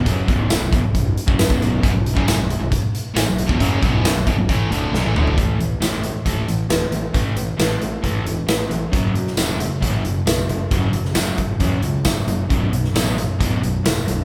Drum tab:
HH |x-x-x-x-x-x-x-x-|x-x-x-x-x-x-x-x-|x-x-x-x-x-x-----|x-x-x-x-x-x-x-x-|
TB |----x-------x---|----x-------x---|----x-----------|----x-------x---|
SD |----o-------o---|----o-------o---|----o-------o---|----o-------o---|
T2 |----------------|----------------|--------------o-|----------------|
FT |----------------|----------------|---------------o|----------------|
BD |o-o---o-o--o-o--|o--o----o------o|o-o---o-o-------|o-------o-------|

HH |x-x-x-x-x-x-x-x-|x-x-x-x-x-x-x-x-|x-x-x-x-x-x-x-x-|x-x-x-x-x-x-x-x-|
TB |----x-------x---|----x-------x---|----x-------x---|----x-------x---|
SD |----o-------o---|---oo-------o---|---oo-------o---|---oo-------o---|
T2 |----------------|----------------|----------------|----------------|
FT |----------------|----------------|----------------|----------------|
BD |o-------o-------|o-------o-------|o-----o-o---o---|o-------o-------|